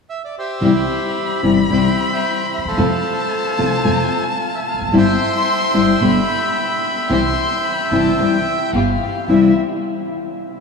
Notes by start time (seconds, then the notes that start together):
0.10 E5
0.25 D5
0.39 G4 C5 E5
0.61 C2 C3 E3 G3 C4 E4 G4 B5
1.42 G1 C3 E3 G3 C4 E4 G4
1.69 C2 C3 E3 G3 C4 E4 G4 G5
1.73 C5 E5
2.13 C5 E5 G5
2.53 E5
2.58 D2
2.65 D#2 A4 C5 F5
2.71 E2
2.77 F2 C3 F3 A3 C4 F4 A4 A5
3.58 C2 C3 F3 A3 C4 F4 A4
3.84 F2 C3 F3 A3 C4 F4 A4
4.42 F5
4.55 E5
4.69 F5
4.74 E1
4.81 F1
4.88 F#1
4.92 G1 G3 C4 E4 G4 C6
4.98 C5 E5 G5
5.74 G1 G3 C4 E4 G4
6.00 G1 B2 D3 G3 B3 D4 G4 B5
6.56 B5
7.09 C2 C3 E3 G3 C4 E4 G4 C6
7.64 B5
7.91 G1 C3 E3 G3 C4 E4 G4 A5
8.18 C2 C3 E3 G3 C4 E4 G4 G5
8.73 G1 B3 F4 G4 F5
9.28 C2 C3 E3 G3 C4 E4 G4 E5